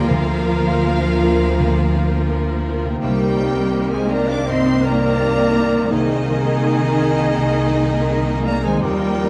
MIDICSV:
0, 0, Header, 1, 11, 480
1, 0, Start_track
1, 0, Tempo, 732601
1, 52, Time_signature, 4, 2, 24, 8
1, 2932, Tempo, 722892
1, 5332, Tempo, 747198
1, 6106, End_track
2, 0, Start_track
2, 0, Title_t, "Violin section"
2, 0, Program_c, 0, 48
2, 54, Note_on_c, 0, 77, 105
2, 1739, Note_off_c, 0, 77, 0
2, 1983, Note_on_c, 0, 79, 105
2, 2551, Note_off_c, 0, 79, 0
2, 2577, Note_on_c, 0, 80, 90
2, 2695, Note_off_c, 0, 80, 0
2, 2695, Note_on_c, 0, 82, 101
2, 2814, Note_off_c, 0, 82, 0
2, 2828, Note_on_c, 0, 86, 102
2, 2940, Note_off_c, 0, 86, 0
2, 2940, Note_on_c, 0, 84, 113
2, 3176, Note_off_c, 0, 84, 0
2, 3181, Note_on_c, 0, 82, 118
2, 3892, Note_on_c, 0, 75, 120
2, 3893, Note_off_c, 0, 82, 0
2, 5542, Note_off_c, 0, 75, 0
2, 5576, Note_on_c, 0, 82, 105
2, 5688, Note_off_c, 0, 82, 0
2, 5703, Note_on_c, 0, 80, 94
2, 5812, Note_off_c, 0, 80, 0
2, 5814, Note_on_c, 0, 79, 103
2, 6106, Note_off_c, 0, 79, 0
2, 6106, End_track
3, 0, Start_track
3, 0, Title_t, "Flute section"
3, 0, Program_c, 1, 73
3, 54, Note_on_c, 1, 70, 83
3, 1713, Note_off_c, 1, 70, 0
3, 1969, Note_on_c, 1, 70, 83
3, 2544, Note_off_c, 1, 70, 0
3, 2554, Note_on_c, 1, 72, 83
3, 2684, Note_off_c, 1, 72, 0
3, 2684, Note_on_c, 1, 74, 95
3, 2798, Note_on_c, 1, 77, 92
3, 2809, Note_off_c, 1, 74, 0
3, 2912, Note_on_c, 1, 75, 95
3, 2925, Note_off_c, 1, 77, 0
3, 3153, Note_on_c, 1, 74, 98
3, 3161, Note_off_c, 1, 75, 0
3, 3865, Note_off_c, 1, 74, 0
3, 3885, Note_on_c, 1, 68, 93
3, 5403, Note_off_c, 1, 68, 0
3, 5564, Note_on_c, 1, 74, 85
3, 5682, Note_off_c, 1, 74, 0
3, 5688, Note_on_c, 1, 72, 87
3, 5802, Note_off_c, 1, 72, 0
3, 5805, Note_on_c, 1, 70, 89
3, 6106, Note_off_c, 1, 70, 0
3, 6106, End_track
4, 0, Start_track
4, 0, Title_t, "Clarinet"
4, 0, Program_c, 2, 71
4, 46, Note_on_c, 2, 65, 94
4, 1709, Note_off_c, 2, 65, 0
4, 1973, Note_on_c, 2, 67, 93
4, 2571, Note_on_c, 2, 68, 79
4, 2581, Note_off_c, 2, 67, 0
4, 2692, Note_on_c, 2, 70, 90
4, 2702, Note_off_c, 2, 68, 0
4, 2806, Note_on_c, 2, 74, 91
4, 2816, Note_off_c, 2, 70, 0
4, 2926, Note_on_c, 2, 72, 106
4, 2936, Note_off_c, 2, 74, 0
4, 3163, Note_on_c, 2, 70, 102
4, 3173, Note_off_c, 2, 72, 0
4, 3877, Note_off_c, 2, 70, 0
4, 3881, Note_on_c, 2, 63, 100
4, 5566, Note_on_c, 2, 70, 92
4, 5575, Note_off_c, 2, 63, 0
4, 5685, Note_on_c, 2, 68, 97
4, 5695, Note_off_c, 2, 70, 0
4, 5796, Note_off_c, 2, 68, 0
4, 5800, Note_on_c, 2, 67, 95
4, 6106, Note_off_c, 2, 67, 0
4, 6106, End_track
5, 0, Start_track
5, 0, Title_t, "Violin section"
5, 0, Program_c, 3, 48
5, 0, Note_on_c, 3, 65, 86
5, 0, Note_on_c, 3, 70, 90
5, 1953, Note_off_c, 3, 65, 0
5, 1953, Note_off_c, 3, 70, 0
5, 1975, Note_on_c, 3, 67, 81
5, 1976, Note_on_c, 3, 60, 81
5, 3862, Note_off_c, 3, 60, 0
5, 3862, Note_off_c, 3, 67, 0
5, 3887, Note_on_c, 3, 63, 84
5, 3889, Note_on_c, 3, 68, 83
5, 5802, Note_off_c, 3, 68, 0
5, 5802, Note_on_c, 3, 70, 85
5, 6106, Note_off_c, 3, 63, 0
5, 6106, Note_off_c, 3, 70, 0
5, 6106, End_track
6, 0, Start_track
6, 0, Title_t, "Grand piano"
6, 0, Program_c, 4, 0
6, 0, Control_c, 4, 64, 127
6, 0, Note_on_c, 4, 46, 71
6, 0, Note_on_c, 4, 58, 58
6, 0, Note_on_c, 4, 65, 54
6, 0, Note_on_c, 4, 70, 54
6, 66, Note_off_c, 4, 58, 0
6, 66, Note_off_c, 4, 70, 0
6, 66, Control_c, 4, 64, 0
6, 69, Note_on_c, 4, 38, 87
6, 72, Note_off_c, 4, 46, 0
6, 72, Note_off_c, 4, 65, 0
6, 157, Control_c, 4, 64, 127
6, 298, Note_off_c, 4, 38, 0
6, 312, Note_on_c, 4, 58, 54
6, 314, Note_on_c, 4, 65, 56
6, 320, Note_on_c, 4, 70, 60
6, 524, Note_off_c, 4, 58, 0
6, 525, Note_off_c, 4, 65, 0
6, 528, Note_off_c, 4, 70, 0
6, 564, Note_on_c, 4, 58, 60
6, 566, Note_on_c, 4, 65, 61
6, 567, Note_on_c, 4, 70, 60
6, 771, Note_off_c, 4, 58, 0
6, 772, Note_off_c, 4, 65, 0
6, 773, Note_off_c, 4, 70, 0
6, 804, Note_on_c, 4, 65, 64
6, 805, Note_on_c, 4, 58, 65
6, 809, Note_on_c, 4, 70, 66
6, 1010, Note_off_c, 4, 65, 0
6, 1011, Note_off_c, 4, 58, 0
6, 1013, Note_off_c, 4, 70, 0
6, 1048, Note_on_c, 4, 38, 66
6, 1267, Note_off_c, 4, 38, 0
6, 1278, Note_on_c, 4, 65, 59
6, 1279, Note_on_c, 4, 58, 56
6, 1281, Note_on_c, 4, 70, 64
6, 1485, Note_off_c, 4, 65, 0
6, 1486, Note_off_c, 4, 58, 0
6, 1487, Note_off_c, 4, 70, 0
6, 1507, Note_on_c, 4, 58, 64
6, 1507, Note_on_c, 4, 65, 60
6, 1510, Note_on_c, 4, 70, 70
6, 1719, Note_off_c, 4, 58, 0
6, 1719, Note_off_c, 4, 65, 0
6, 1720, Note_off_c, 4, 70, 0
6, 1754, Note_on_c, 4, 65, 51
6, 1756, Note_on_c, 4, 58, 56
6, 1760, Note_on_c, 4, 70, 59
6, 1960, Note_off_c, 4, 65, 0
6, 1961, Note_off_c, 4, 58, 0
6, 1964, Note_off_c, 4, 70, 0
6, 1987, Control_c, 4, 64, 0
6, 1987, Note_on_c, 4, 36, 82
6, 2075, Control_c, 4, 64, 127
6, 2212, Note_off_c, 4, 36, 0
6, 2225, Note_on_c, 4, 58, 56
6, 2228, Note_on_c, 4, 67, 65
6, 2230, Note_on_c, 4, 63, 59
6, 2436, Note_off_c, 4, 58, 0
6, 2437, Note_off_c, 4, 67, 0
6, 2438, Note_off_c, 4, 63, 0
6, 2462, Note_on_c, 4, 58, 58
6, 2464, Note_on_c, 4, 63, 57
6, 2469, Note_on_c, 4, 67, 68
6, 2674, Note_off_c, 4, 58, 0
6, 2676, Note_off_c, 4, 63, 0
6, 2678, Note_off_c, 4, 67, 0
6, 2696, Note_on_c, 4, 58, 64
6, 2697, Note_on_c, 4, 63, 61
6, 2700, Note_on_c, 4, 67, 66
6, 2910, Note_off_c, 4, 58, 0
6, 2910, Note_off_c, 4, 63, 0
6, 2912, Note_off_c, 4, 67, 0
6, 2932, Note_on_c, 4, 43, 58
6, 3164, Note_off_c, 4, 43, 0
6, 3171, Note_on_c, 4, 58, 54
6, 3177, Note_on_c, 4, 63, 59
6, 3179, Note_on_c, 4, 67, 62
6, 3385, Note_off_c, 4, 58, 0
6, 3389, Note_off_c, 4, 63, 0
6, 3389, Note_off_c, 4, 67, 0
6, 3409, Note_on_c, 4, 58, 68
6, 3412, Note_on_c, 4, 63, 58
6, 3412, Note_on_c, 4, 67, 71
6, 3624, Note_off_c, 4, 58, 0
6, 3626, Note_off_c, 4, 63, 0
6, 3626, Note_off_c, 4, 67, 0
6, 3648, Note_on_c, 4, 58, 54
6, 3650, Note_on_c, 4, 63, 55
6, 3651, Note_on_c, 4, 67, 58
6, 3864, Note_off_c, 4, 58, 0
6, 3866, Note_off_c, 4, 63, 0
6, 3866, Note_off_c, 4, 67, 0
6, 3896, Note_on_c, 4, 36, 79
6, 3901, Control_c, 4, 64, 0
6, 4006, Control_c, 4, 64, 127
6, 4125, Note_off_c, 4, 36, 0
6, 4135, Note_on_c, 4, 58, 58
6, 4138, Note_on_c, 4, 63, 51
6, 4138, Note_on_c, 4, 68, 61
6, 4349, Note_off_c, 4, 58, 0
6, 4350, Note_off_c, 4, 63, 0
6, 4351, Note_off_c, 4, 68, 0
6, 4377, Note_on_c, 4, 58, 61
6, 4382, Note_on_c, 4, 68, 66
6, 4384, Note_on_c, 4, 63, 58
6, 4591, Note_off_c, 4, 58, 0
6, 4594, Note_off_c, 4, 68, 0
6, 4595, Note_off_c, 4, 63, 0
6, 4612, Note_on_c, 4, 58, 65
6, 4619, Note_on_c, 4, 63, 62
6, 4620, Note_on_c, 4, 68, 67
6, 4828, Note_off_c, 4, 58, 0
6, 4832, Note_off_c, 4, 63, 0
6, 4833, Note_off_c, 4, 68, 0
6, 4859, Note_on_c, 4, 36, 66
6, 5088, Note_off_c, 4, 36, 0
6, 5103, Note_on_c, 4, 58, 59
6, 5104, Note_on_c, 4, 63, 62
6, 5107, Note_on_c, 4, 68, 60
6, 5315, Note_off_c, 4, 58, 0
6, 5315, Note_off_c, 4, 63, 0
6, 5317, Note_off_c, 4, 68, 0
6, 5344, Note_on_c, 4, 58, 67
6, 5347, Note_on_c, 4, 63, 66
6, 5348, Note_on_c, 4, 68, 71
6, 5549, Note_off_c, 4, 58, 0
6, 5550, Note_off_c, 4, 63, 0
6, 5551, Note_off_c, 4, 68, 0
6, 5579, Note_on_c, 4, 58, 56
6, 5581, Note_on_c, 4, 63, 54
6, 5582, Note_on_c, 4, 68, 62
6, 5786, Note_off_c, 4, 58, 0
6, 5787, Note_off_c, 4, 63, 0
6, 5787, Note_off_c, 4, 68, 0
6, 5810, Note_on_c, 4, 39, 85
6, 5813, Control_c, 4, 64, 0
6, 5909, Control_c, 4, 64, 127
6, 6046, Note_off_c, 4, 39, 0
6, 6058, Note_on_c, 4, 58, 58
6, 6061, Note_on_c, 4, 65, 57
6, 6063, Note_on_c, 4, 70, 67
6, 6106, Note_off_c, 4, 58, 0
6, 6106, Note_off_c, 4, 65, 0
6, 6106, Note_off_c, 4, 70, 0
6, 6106, End_track
7, 0, Start_track
7, 0, Title_t, "Harp"
7, 0, Program_c, 5, 46
7, 0, Note_on_c, 5, 50, 74
7, 0, Note_on_c, 5, 58, 59
7, 0, Note_on_c, 5, 65, 56
7, 26, Note_on_c, 5, 70, 55
7, 1856, Note_on_c, 5, 48, 66
7, 1881, Note_off_c, 5, 58, 0
7, 1889, Note_on_c, 5, 58, 57
7, 1917, Note_on_c, 5, 63, 51
7, 1935, Note_off_c, 5, 50, 0
7, 1947, Note_on_c, 5, 67, 55
7, 1965, Note_off_c, 5, 65, 0
7, 2581, Note_off_c, 5, 70, 0
7, 3758, Note_off_c, 5, 48, 0
7, 3766, Note_on_c, 5, 48, 68
7, 3788, Note_off_c, 5, 58, 0
7, 3796, Note_on_c, 5, 58, 53
7, 3818, Note_off_c, 5, 63, 0
7, 3826, Note_on_c, 5, 63, 57
7, 3858, Note_on_c, 5, 68, 57
7, 3894, Note_off_c, 5, 67, 0
7, 5691, Note_on_c, 5, 51, 63
7, 5711, Note_off_c, 5, 58, 0
7, 5718, Note_on_c, 5, 58, 59
7, 5746, Note_on_c, 5, 65, 58
7, 5762, Note_off_c, 5, 48, 0
7, 5776, Note_on_c, 5, 70, 59
7, 5806, Note_off_c, 5, 68, 0
7, 6106, Note_off_c, 5, 51, 0
7, 6106, Note_off_c, 5, 58, 0
7, 6106, Note_off_c, 5, 63, 0
7, 6106, Note_off_c, 5, 65, 0
7, 6106, Note_off_c, 5, 70, 0
7, 6106, End_track
8, 0, Start_track
8, 0, Title_t, "Cello section"
8, 0, Program_c, 6, 48
8, 51, Note_on_c, 6, 53, 94
8, 1738, Note_off_c, 6, 53, 0
8, 1975, Note_on_c, 6, 55, 98
8, 2547, Note_off_c, 6, 55, 0
8, 2569, Note_on_c, 6, 56, 86
8, 2685, Note_on_c, 6, 58, 87
8, 2691, Note_off_c, 6, 56, 0
8, 2809, Note_off_c, 6, 58, 0
8, 2809, Note_on_c, 6, 62, 90
8, 2928, Note_on_c, 6, 60, 91
8, 2930, Note_off_c, 6, 62, 0
8, 3165, Note_off_c, 6, 60, 0
8, 3167, Note_on_c, 6, 58, 94
8, 3872, Note_off_c, 6, 58, 0
8, 3880, Note_on_c, 6, 51, 104
8, 5562, Note_off_c, 6, 51, 0
8, 5566, Note_on_c, 6, 58, 92
8, 5683, Note_off_c, 6, 58, 0
8, 5687, Note_on_c, 6, 56, 93
8, 5801, Note_off_c, 6, 56, 0
8, 5807, Note_on_c, 6, 55, 106
8, 6106, Note_off_c, 6, 55, 0
8, 6106, End_track
9, 0, Start_track
9, 0, Title_t, "French horn section"
9, 0, Program_c, 7, 60
9, 62, Note_on_c, 7, 53, 92
9, 1717, Note_off_c, 7, 53, 0
9, 1978, Note_on_c, 7, 55, 86
9, 2548, Note_off_c, 7, 55, 0
9, 2575, Note_on_c, 7, 56, 83
9, 2694, Note_off_c, 7, 56, 0
9, 2699, Note_on_c, 7, 58, 86
9, 2816, Note_off_c, 7, 58, 0
9, 2825, Note_on_c, 7, 62, 82
9, 2938, Note_off_c, 7, 62, 0
9, 2944, Note_on_c, 7, 60, 96
9, 3173, Note_off_c, 7, 60, 0
9, 3180, Note_on_c, 7, 58, 98
9, 3892, Note_on_c, 7, 51, 95
9, 3893, Note_off_c, 7, 58, 0
9, 5568, Note_off_c, 7, 51, 0
9, 5576, Note_on_c, 7, 58, 94
9, 5686, Note_off_c, 7, 58, 0
9, 5694, Note_on_c, 7, 56, 84
9, 5806, Note_on_c, 7, 55, 104
9, 5807, Note_off_c, 7, 56, 0
9, 6106, Note_off_c, 7, 55, 0
9, 6106, End_track
10, 0, Start_track
10, 0, Title_t, "Viola section"
10, 0, Program_c, 8, 48
10, 0, Note_on_c, 8, 53, 85
10, 0, Note_on_c, 8, 58, 89
10, 1950, Note_off_c, 8, 58, 0
10, 1951, Note_off_c, 8, 53, 0
10, 1976, Note_on_c, 8, 51, 80
10, 1976, Note_on_c, 8, 58, 78
10, 5776, Note_off_c, 8, 58, 0
10, 5802, Note_off_c, 8, 51, 0
10, 5802, Note_on_c, 8, 53, 79
10, 5803, Note_on_c, 8, 58, 84
10, 6106, Note_off_c, 8, 53, 0
10, 6106, Note_off_c, 8, 58, 0
10, 6106, End_track
11, 0, Start_track
11, 0, Title_t, "Double bass section"
11, 0, Program_c, 10, 48
11, 54, Note_on_c, 10, 38, 88
11, 1976, Note_off_c, 10, 38, 0
11, 1978, Note_on_c, 10, 36, 82
11, 5777, Note_off_c, 10, 36, 0
11, 5802, Note_on_c, 10, 39, 94
11, 6106, Note_off_c, 10, 39, 0
11, 6106, End_track
0, 0, End_of_file